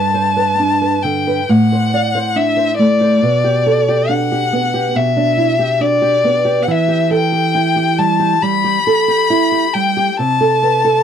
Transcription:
Already playing: nylon-string guitar G2 B4, violin A5
0.14 nylon-string guitar C5
0.37 nylon-string guitar B4
0.59 nylon-string guitar D4
0.81 nylon-string guitar B4
1.03 nylon-string guitar D3, violin G5
1.27 nylon-string guitar B4
1.49 nylon-string guitar A2, violin F#5
1.72 nylon-string guitar C5
1.94 nylon-string guitar D5
2.15 nylon-string guitar C5
2.36 nylon-string guitar D4, violin E5
2.57 nylon-string guitar C5
2.79 nylon-string guitar A3, violin D5
3.01 nylon-string guitar C5
3.22 nylon-string guitar B2
3.44 nylon-string guitar G4
3.66 nylon-string guitar A4
3.88 nylon-string guitar G4
4.09 nylon-string guitar D4, violin F#5
4.32 nylon-string guitar G4
4.53 nylon-string guitar B3
4.74 nylon-string guitar G4
4.95 nylon-string guitar B2, violin E5
5.17 nylon-string guitar D4
5.38 nylon-string guitar E4
5.59 nylon-string guitar G4
5.80 nylon-string guitar D4, violin D5
6.02 nylon-string guitar G4
6.24 nylon-string guitar B3
6.45 nylon-string guitar G4
6.62 violin F#5
6.68 nylon-string guitar E3, violin E5
6.88 nylon-string guitar G4
7.11 nylon-string guitar A4, violin G5
7.32 nylon-string guitar G4
7.55 nylon-string guitar E4
7.76 nylon-string guitar G4
7.98 nylon-string guitar G3, violin A5
8.20 nylon-string guitar G4
8.42 nylon-string guitar G3, violin B5
8.64 nylon-string guitar G4
8.87 nylon-string guitar A4
9.08 nylon-string guitar G4
9.30 nylon-string guitar E4
9.52 nylon-string guitar G4
9.74 nylon-string guitar G3, violin G5
9.97 nylon-string guitar G4
10.17 nylon-string guitar C3, violin A5
10.41 nylon-string guitar A4
10.63 nylon-string guitar B4
10.84 nylon-string guitar A4

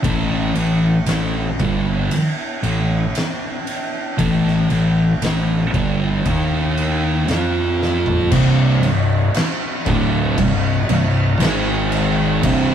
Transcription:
0.03 fingered electric bass A1, distorted electric guitar A2 E3 A3, kick, ride
0.55 fingered electric bass A1, distorted electric guitar A2 E3, ride
1.06 fingered electric bass A1, distorted electric guitar A2 E3, snare, ride
1.59 fingered electric bass G1, distorted electric guitar G2 D3 G3, kick, ride
2.11 ride
2.63 fingered electric bass A1, distorted electric guitar A2 E3, ride
3.15 snare, ride
3.67 ride
4.18 fingered electric bass A1, distorted electric guitar A2 E3 A3, kick, ride
4.48 snare
4.69 fingered electric bass A1, distorted electric guitar A2 E3, ride
5.21 fingered electric bass A1, distorted electric guitar A2 E3, snare, ride
5.73 fingered electric bass G1, distorted electric guitar G2 D3 G3, kick, ride
6.24 fingered electric bass D#2, distorted electric guitar D#3 A#3 D#4, kick, ride
6.77 ride
7.27 fingered electric bass F2, distorted electric guitar F3 C4 F4, snare, ride
7.83 snare
8.06 floor tom
8.30 fingered electric bass C1, distorted electric guitar C2 G2 C3, kick, crash
8.82 fingered electric bass C1, distorted electric guitar C2 G2, crash
9.34 snare, crash
9.85 fingered electric bass D1, distorted electric guitar D2 A2 D3, kick, crash
10.37 fingered electric bass C1, distorted electric guitar C2 G2, kick, crash
10.88 fingered electric bass C1, distorted electric guitar C2 G2, crash
11.39 fingered electric bass G#1, distorted electric guitar G#2 D#3 G#3, snare, crash
11.92 crash
12.42 fingered electric bass C1, distorted electric guitar C2 G2 C3, kick, crash

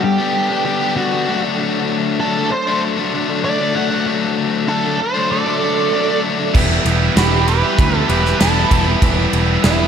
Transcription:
Already playing: overdriven electric guitar G2, tonewheel organ G3 B3 D4 A4
0.02 lead electric guitar G4, muted overdriven electric guitar stroke
0.18 overdriven electric guitar G3 B3 D4
0.49 overdriven electric guitar G3 B3 D4
0.65 overdriven electric guitar D3 G3 B3 D4, lead electric guitar G4
0.81 overdriven electric guitar G3 B3 D4
0.96 overdriven electric guitar G2 D3 G3 B3 D4, lead electric guitar F#4
1.12 overdriven electric guitar G3 B3 D4
1.27 overdriven electric guitar D3 F#3 A3 D4, tonewheel organ F#3 A3 D4 A4
1.42 overdriven electric guitar F#3 A3 D4
1.58 overdriven electric guitar D3 F#3 A3 D4
2.20 overdriven electric guitar D3 F#3 A3 D4, lead electric guitar A4
2.36 overdriven electric guitar F#3 A3 D4
2.52 lead electric guitar C5, muted overdriven electric guitar stroke
2.67 overdriven electric guitar F#3 A3 D4
2.98 overdriven electric guitar F#3 A3 D4
3.13 overdriven electric guitar D3 F#3 A3 D4
3.28 overdriven electric guitar F#3 A3 D4
3.44 overdriven electric guitar D3 F#3 A3 D4, lead electric guitar D5
3.59 overdriven electric guitar F#3 A3 D4
3.75 overdriven electric guitar D3 F#3 A3 D4, tonewheel organ F#3 A3 D4 A4, lead electric guitar F#5
3.90 overdriven electric guitar F#3 A3 D4
4.06 overdriven electric guitar D3 F#3 A3 D4
4.67 overdriven electric guitar D3 F#3 A3 D4, lead electric guitar A4
4.84 overdriven electric guitar F#3 A3 D4
4.99 lead electric guitar C5, muted overdriven electric guitar stroke
5.14 overdriven electric guitar F#3 A3 D4
5.31 lead electric guitar A4 D5
5.46 overdriven electric guitar F#3 A3 D4
5.61 overdriven electric guitar D3 F#3 A3 D4
5.76 overdriven electric guitar F#3 A3 D4
5.92 overdriven electric guitar D3 F#3 A3 D4
6.08 overdriven electric guitar F#3 A3 D4
6.23 overdriven electric guitar D3 F#3 A3 D4
6.39 overdriven electric guitar F#3 A3 D4
6.54 picked electric bass E1, overdriven electric guitar E3 G3 B3 E4, tonewheel organ G3 B3 E4 B4, distorted electric guitar G4, kick, crash
6.85 picked electric bass E1, distorted electric guitar E3 B3 E4 G4, snare, ride
7.15 picked electric bass E1, overdriven electric guitar E3 G3 B3 E4, lead electric guitar E4 G4, distorted electric guitar G4, snare, ride
7.31 overdriven electric guitar G3 B3 E4
7.46 distorted electric guitar E3 B3 E4 G4, lead electric guitar G4 B4, muted overdriven electric guitar stroke, ride
7.63 overdriven electric guitar G3 B3 E4, muted distorted electric guitar stroke
7.79 picked electric bass D2, kick, ride
7.92 overdriven electric guitar B3 E4, lead electric guitar F4, distorted electric guitar G4
7.97 overdriven electric guitar G3, lead electric guitar A4
8.08 picked electric bass E1, overdriven electric guitar E3 G3 B3 E4, lead electric guitar G4 B4, distorted electric guitar G4, ride
8.24 overdriven electric guitar B3 E4, muted distorted electric guitar stroke, snare
8.28 overdriven electric guitar G3
8.39 picked electric bass E1, overdriven electric guitar E3 G3 B3 E4, lead electric guitar E4 A4, distorted electric guitar G4, snare, ride
8.55 overdriven electric guitar G3 B3 E4
8.69 picked electric bass E1, overdriven electric guitar E3 G3 B3 E4, distorted electric guitar G4, kick, ride
8.84 overdriven electric guitar B3 E4, distorted electric guitar G4
8.89 overdriven electric guitar G3
9.00 picked electric bass E1, overdriven electric guitar E3 G3 B3 E4, tonewheel organ G3 B3 E4 B4, distorted electric guitar G4, kick, ride
9.32 picked electric bass E1, distorted electric guitar E3 B3 E4 G4, ride
9.63 picked electric bass E1, overdriven electric guitar E3 G3 B3 E4, lead electric guitar B3 E4, distorted electric guitar G4, snare, ride
9.79 overdriven electric guitar G3 B3 E4

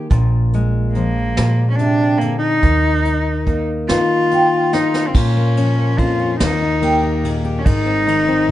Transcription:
Already playing: steel-string acoustic guitar D#3 A#3
0.10 upright bass A#1, steel-string acoustic guitar A#2, mandolin F4, kick, closed hi-hat
0.53 steel-string acoustic guitar G#3, closed hi-hat
0.94 steel-string acoustic guitar F3, cello A#3, mandolin D#4, closed hi-hat
1.37 upright bass A#2, steel-string acoustic guitar A#2, mandolin F4, snare, closed hi-hat
1.70 cello C#4
1.75 cello D4, mandolin G4, closed hi-hat
1.80 steel-string acoustic guitar C3
2.18 cello A#3, mandolin G#4, closed hi-hat
2.22 steel-string acoustic guitar D3
2.39 cello D#4
2.63 upright bass D#2, steel-string acoustic guitar D#3, kick, closed hi-hat
3.05 steel-string acoustic guitar D#4, closed hi-hat
3.46 steel-string acoustic guitar A#3, mandolin D#4, kick, closed hi-hat
3.88 upright bass D#3, steel-string acoustic guitar D#4, cello F4, mandolin F4, snare, closed hi-hat
4.30 steel-string acoustic guitar F4, mandolin G4, closed hi-hat
4.72 cello D#4, steel-string acoustic guitar F4, mandolin G#4, snare
4.94 snare
5.07 cello C4
5.14 upright bass A#2, steel-string acoustic guitar A#2, cello C#4, mandolin F4, kick, crash
5.37 steel-string acoustic guitar A#3
5.57 steel-string acoustic guitar F3 C#4, ride
5.79 steel-string acoustic guitar A#3
5.98 steel-string acoustic guitar F2, mandolin D#4, cello F4, kick, ride
6.20 steel-string acoustic guitar C#4
6.39 upright bass D#2, steel-string acoustic guitar D#3, cello D#4, mandolin F4, snare, ride
6.62 steel-string acoustic guitar D#4
6.81 steel-string acoustic guitar A#3 G4, mandolin G4, ride
7.03 steel-string acoustic guitar D#4
7.23 steel-string acoustic guitar A#2, mandolin G#4, ride
7.45 steel-string acoustic guitar G4
7.58 cello C#4
7.65 upright bass G#1, steel-string acoustic guitar G#2, cello D#4, mandolin F4, kick, ride
7.86 steel-string acoustic guitar C4
8.07 steel-string acoustic guitar D#3 D#4, ride
8.28 steel-string acoustic guitar C4
8.48 steel-string acoustic guitar G#2

